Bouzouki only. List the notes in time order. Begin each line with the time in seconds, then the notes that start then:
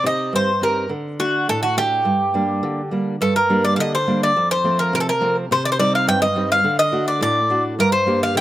0.06 D#5
0.36 C5
0.63 A#4
1.20 F#4
1.49 A4
1.63 F#4
1.78 G4
3.22 A4
3.36 A#4
3.64 D5
3.76 F5
3.80 D#5
3.95 C5
4.23 D5
4.51 C5
4.79 A#4
4.95 A#4
5.00 A4
5.09 A#4
5.52 C5
5.65 D5
5.72 C5
5.80 D5
5.95 F5
6.09 G5
6.22 D#5
6.52 F5
6.79 D#5
7.08 D5
7.23 D5
7.80 A#4
7.92 C5
8.23 F5
8.37 G5